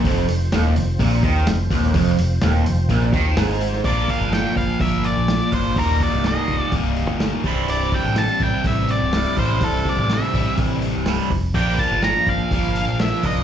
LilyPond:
<<
  \new Staff \with { instrumentName = "Lead electric guitar" } { \time 4/4 \key bes \lydian \tempo 4 = 125 r1 | r1 | d''8 f''8 g''8 f''8 e''8 d''4 c''8 | bes'8 d''8 ees''4 r2 |
d''8 g''8 a''8 g''8 e''8 d''4 c''8 | a'8 d''8 e''4 r2 | g''8 a''8 bes''8 f''4 f''8 e''8 ees''8 | }
  \new Staff \with { instrumentName = "Tonewheel organ" } { \time 4/4 \key bes \lydian <c' f' c''>1~ | <c' f' c''>1 | r1 | r1 |
r1 | r1 | r1 | }
  \new Staff \with { instrumentName = "Distorted electric guitar" } { \clef bass \time 4/4 \key bes \lydian f,8 f,8 ees,8 f,8 bes,8 ees8 f,8 ees,8 | f,8 f,8 ees,8 f,8 bes,8 ees8 aes,4 | <bes, f bes d' f' bes'>2 <bes, f bes d' f' bes'>2 | <ees, bes, ees g bes ees'>2 <ees, bes, ees g bes ees'>4. <c, g, c g e'>8~ |
<c, g, c g e'>4. <c, g, c g e'>2 <c, g, c g e'>8~ | <c, g, c g e'>4. <c, g, c g e'>2 r8 | <bes, f bes d' f' bes'>2 <bes, f bes d' f' bes'>2 | }
  \new Staff \with { instrumentName = "Overdriven electric guitar" } { \clef bass \time 4/4 \key bes \lydian f,8 f,8 ees,8 f,8 bes,8 ees8 f,8 ees,8 | f,8 f,8 ees,8 f,8 bes,8 ees8 aes,4 | <bes, f bes d' f' bes'>2.~ <bes, f bes d' f' bes'>8 <bes, f bes d' f' bes'>8 | <ees, bes, ees g bes ees'>2.~ <ees, bes, ees g bes ees'>8 <c, g, c g e'>8~ |
<c, g, c g e'>2. <c, g, c g e'>8 <c, g, c g e'>8~ | <c, g, c g e'>2. <c, g, c g e'>8 r8 | <bes, f bes d' f' bes'>2.~ <bes, f bes d' f' bes'>8 <bes, f bes d' f' bes'>8 | }
  \new Staff \with { instrumentName = "Picked electric bass" } { \clef bass \time 4/4 \key bes \lydian f,,8 f,,8 ees,,8 f,,8 bes,,8 ees,8 f,,8 ees,,8 | f,,8 f,,8 ees,,8 f,,8 bes,,8 ees,8 aes,,4 | bes,,8 r16 g,,8 r16 g,,16 r16 g,,8. bes,,8 r16 g,,8 | ees,,8 r16 c,,8 r16 c,,16 r16 c,,8. g,,8 r16 c,,8 |
c,,8 r16 a,,8 r16 a,,16 r16 a,,8. c,,8 r16 a,,8 | c,,8 r16 a,,8 r16 a,,16 r16 a,,8. c,,8 r16 f,,8 | bes,,8 r16 g,,8 r16 g,,16 r16 g,,8. bes,,8 r16 c,,8 | }
  \new DrumStaff \with { instrumentName = "Drums" } \drummode { \time 4/4 <hho bd>8 hho8 <hho sn>8 hho8 <hho bd>8 <hho bd>8 <hho sn>8 <hho bd>16 sn16 | <hho bd>8 hho8 <hho sn>8 hho8 <hho bd>8 <hho bd>8 <hho sn>8 hho16 sn16 | <hho bd>8 <hho bd>8 <hho sn>8 <hho bd>8 <hho bd>8 hho8 <hho sn>8 <hho bd>8 | <hho bd>8 <hho bd>8 <hho sn>8 <hho bd>8 <hho bd>8 hho8 <hho sn>8 <hho bd>8 |
hho8 <hho bd>8 <hho sn>8 <hho bd>8 <hho bd>8 hho8 <hho sn>8 <hho bd>8 | <hho bd>8 <hho bd>8 <hho sn>8 <hho bd>8 <hho bd>8 hho8 <hho sn>8 <hho bd>8 | <hho bd>8 <hho bd>8 <hho sn>8 <hho bd>8 <hho bd>8 hho8 <hho sn>8 <hho bd>8 | }
>>